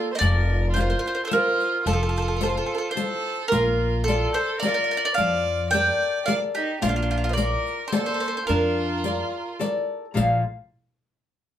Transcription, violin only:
0.12 C5
0.17 A#4
0.70 F4
1.23 F4 A4
1.84 F4
2.98 A4
3.52 F4
4.06 F4
4.33 A4
4.59 A#4
5.15 D5
5.70 D5
6.25 D5
6.56 D#4
6.82 D4
7.30 C5
7.35 A#4
7.91 A4
8.46 F4

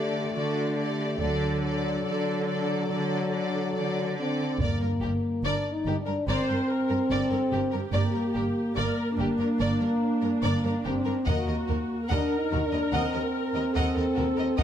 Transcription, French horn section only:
Already playing: A3
1.20 F#3
4.19 C4
4.61 A#3
5.45 D4
5.71 D#4
6.00 D4
6.27 C4
7.91 A#3
8.75 A#3
10.87 C4
11.28 A#3
12.09 D4
12.37 D#4
12.66 D4
12.95 C4
14.60 A#3

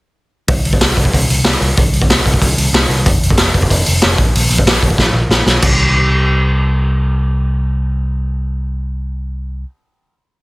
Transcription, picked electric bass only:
0.48 C2
0.65 C2
0.81 C2
0.97 C2
1.13 C2
1.29 C2
1.44 C2
1.61 C2
1.78 C2
1.93 C2
2.09 C2
2.26 C2
2.42 C2
2.58 C2
2.73 C2
2.89 C2
3.06 F1
3.22 F1
3.38 F1
3.54 F1
3.70 F1
3.88 F1
4.04 F1
4.18 A#1
4.35 A#1
4.50 A#1
4.66 A#1
4.82 A#1
4.98 A#1
5.13 A#1
5.29 A#1
5.46 B1
5.63 C2

